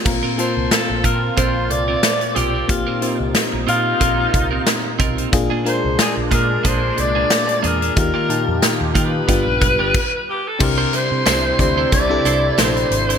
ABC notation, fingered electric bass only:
X:1
M:4/4
L:1/16
Q:"Swing 16ths" 1/4=91
K:Bb
V:1 name="Fingered electric bass" clef=bass
B,,, z2 C,, z B,,, B,,2 B,,,2 C,,2 z2 =B,,,2 | B,,, z2 C,, z B,,, B,,2 B,,,2 C,,2 z2 =B,,,2 | B,,, z2 C,, z B,,, B,,2 B,,,2 C,,2 z2 =E,,2 | E,, z2 F,, z E,, E,2 G,,, B,,, =B,,, G,,, z4 |
[K:Cmix] C,,2 z C, C,,2 D,,2 C,,2 C,,2 B,,,2 _A,,,2 |]